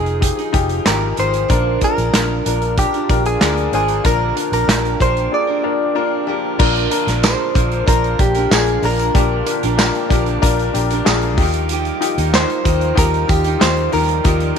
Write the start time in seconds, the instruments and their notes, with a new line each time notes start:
Already playing: fingered electric bass F1, steel-string acoustic guitar F3 C4 D#4 G#4, analog synth pad F3 D#4 G#4, grand piano D#4 F4 G#4 A#4, clean electric guitar G#4
0.06 closed hi-hat
0.20 grand piano D#4 F4 G4, kick, closed hi-hat
0.37 steel-string acoustic guitar C4 D#4 G#4, closed hi-hat
0.53 fingered electric bass F1, grand piano D#4 F4 G4, kick, closed hi-hat
0.69 closed hi-hat
0.85 fingered electric bass G#1, steel-string acoustic guitar F3 C4 D#4 G#4, grand piano D#4 F4 G4, clean electric guitar A#4, snare, clap, closed hi-hat
1.17 fingered electric bass G#1, steel-string acoustic guitar F3 C4 D#4 G#4, grand piano D#4 F4 A#4, clean electric guitar C5, closed hi-hat
1.34 closed hi-hat
1.48 fingered electric bass A#1, steel-string acoustic guitar A#2 D3 F3 A#3 D4 A#4, grand piano A#2 D4 F4 A#4, analog synth pad A#3 D4 F4, kick, closed hi-hat
1.81 grand piano D4 F4 G#4, clean electric guitar A#4, kick, closed hi-hat
1.97 fingered electric bass A#1, steel-string acoustic guitar F3 A#3 D4 A#4, closed hi-hat
2.14 fingered electric bass A#1, grand piano D4 F4 A#4, snare, clap, closed hi-hat
2.45 fingered electric bass A#1, steel-string acoustic guitar F3 A#3 D4 A#4, grand piano D4 F4 A#4, closed hi-hat
2.62 closed hi-hat
2.78 grand piano D4 F4 G4, clean electric guitar G4, kick, closed hi-hat
2.93 steel-string acoustic guitar F3 A#3 D4 A#4, closed hi-hat
3.09 fingered electric bass A#1, grand piano D4 F4 A#4, kick, closed hi-hat
3.26 clean electric guitar G#4, closed hi-hat
3.40 fingered electric bass D2, steel-string acoustic guitar F3 A#3 D4 A#4, grand piano D4 F4 A#4, snare, clap, closed hi-hat
3.58 closed hi-hat
3.72 fingered electric bass G#1, steel-string acoustic guitar F3 A#3 D4 A#4, grand piano D4 F4 C5, clean electric guitar G#4, closed hi-hat
3.88 closed hi-hat
4.04 fingered electric bass A#1, steel-string acoustic guitar A#2 D3 F3 A#3 D4 A#4, grand piano A#2 D4 F4 A#4, analog synth pad G4, clean electric guitar A#4, kick, closed hi-hat
4.36 grand piano D4 F4 A#4, closed hi-hat
4.52 fingered electric bass A#1, steel-string acoustic guitar F3 A#3 D4 A#4, clean electric guitar A#4, closed hi-hat
4.67 fingered electric bass A#1, grand piano D4 F4 A#4, snare, clap, closed hi-hat
4.85 closed hi-hat
5.00 fingered electric bass A#1, steel-string acoustic guitar F3 A#3 D4 A#4, grand piano D4 F4 C5, clean electric guitar C5, kick, closed hi-hat
5.17 closed hi-hat
5.31 grand piano D4 F4 G#4, clean electric guitar D5
5.47 steel-string acoustic guitar F3 A#3 D4 A#4
5.63 grand piano D4 F4 A#4
5.95 steel-string acoustic guitar F3 A#3 D4 A#4, grand piano D4 F4 A#4
6.27 steel-string acoustic guitar F3 A#3 D4 A#4, grand piano D4 F4 G4
6.58 fingered electric bass A#1, grand piano A#2 D4 F4 A#4, steel-string acoustic guitar A#2 D3 F3 A#3 D4 A#4, analog synth pad A#3 D4 F4, kick, crash
6.76 closed hi-hat
6.91 grand piano D4 F4 A#4, closed hi-hat
7.07 fingered electric bass A#1, steel-string acoustic guitar A#2 D3 F3 A#3 D4 A#4, snare, closed hi-hat
7.23 grand piano D4 F4 G#4, clean electric guitar C5, snare, clap, tambourine
7.54 fingered electric bass A#1, steel-string acoustic guitar A#2 D3 F3 A#3 D4 A#4, grand piano D4 F4 C5, kick, closed hi-hat
7.72 closed hi-hat
7.86 fingered electric bass A#1, steel-string acoustic guitar F3 A#3 D4 A#4, grand piano D4 F4 C5, clean electric guitar A#4, kick, closed hi-hat
8.04 closed hi-hat
8.19 fingered electric bass A#1, grand piano D4 F4 G4, clean electric guitar G4, kick, closed hi-hat
8.35 steel-string acoustic guitar F3 A#3 D4 A#4, closed hi-hat
8.50 fingered electric bass A#1, grand piano D4 F4 A#4, clean electric guitar G#4, snare, clap, tambourine
8.66 closed hi-hat
8.82 fingered electric bass A#1, steel-string acoustic guitar F3 A#3 D4 A#4, grand piano D4 F4 A#4, clean electric guitar A#4, open hi-hat
8.99 closed hi-hat
9.14 fingered electric bass A#1, grand piano A#2 D4 F4 G4, steel-string acoustic guitar A#2 D3 F3 A#3 D4 A#4, analog synth pad G4, kick, closed hi-hat
9.46 grand piano D4 F4 A#4, closed hi-hat
9.63 fingered electric bass A#1, steel-string acoustic guitar A#2 D3 F3 A#3 D4 A#4, closed hi-hat
9.77 grand piano D4 F4 A#4, snare, clap, tambourine
9.95 closed hi-hat
10.09 fingered electric bass A#1, steel-string acoustic guitar A#2 D3 F3 A#3 D4 A#4, grand piano D4 F4 G4, kick, closed hi-hat
10.26 closed hi-hat
10.42 fingered electric bass A#1, steel-string acoustic guitar F3 A#3 D4 A#4, grand piano D4 F4 A#4, kick, closed hi-hat
10.59 closed hi-hat
10.74 fingered electric bass A#1, grand piano D4 F4 G4, closed hi-hat
10.90 steel-string acoustic guitar F3 A#3 D4 A#4, closed hi-hat
11.05 fingered electric bass A#1, grand piano D4 F4 G#4, snare, clap, tambourine
11.22 closed hi-hat
11.37 fingered electric bass D#2, grand piano D#3 D#4 F4 G4, steel-string acoustic guitar F3 A#3 D#4, analog synth pad G3 D#4 F4, kick, open hi-hat
11.41 steel-string acoustic guitar G4
11.54 closed hi-hat
11.69 steel-string acoustic guitar D#3 F3 A#3 D#4 G4, closed hi-hat
11.85 closed hi-hat
12.01 grand piano D#4 F4 G4, closed hi-hat
12.18 fingered electric bass D#2, steel-string acoustic guitar D#3 F3 A#3 D#4 G4, closed hi-hat
12.32 grand piano D#4 F4 A#4, clean electric guitar C5, snare, clap, tambourine
12.50 closed hi-hat
12.64 fingered electric bass D#2, steel-string acoustic guitar D#3 F3 A#3 D#4 G4, grand piano D#4 F4 A#4, kick, closed hi-hat
12.81 closed hi-hat
12.95 fingered electric bass D#2, steel-string acoustic guitar F3 A#3, grand piano D#4 F4 G4, clean electric guitar A#4, kick, closed hi-hat
12.99 steel-string acoustic guitar D#4 G4
13.14 closed hi-hat
13.28 fingered electric bass D#2, grand piano D#4 F4 G4, clean electric guitar G4, kick, closed hi-hat
13.44 steel-string acoustic guitar A#3 D#4 G4, closed hi-hat
13.59 fingered electric bass D#2, grand piano D#4 F4 G4, clean electric guitar C5, snare, clap, tambourine
13.77 closed hi-hat
13.92 fingered electric bass D#2, grand piano D#3 D#4 F4 A#4, steel-string acoustic guitar F3 A#3 D#4 G4, clean electric guitar A#4, analog synth pad D5, open hi-hat
14.09 closed hi-hat
14.24 fingered electric bass D#2, steel-string acoustic guitar D#3 F3 A#3 D#4 G4, grand piano D#4 F4 G4, kick, closed hi-hat
14.40 closed hi-hat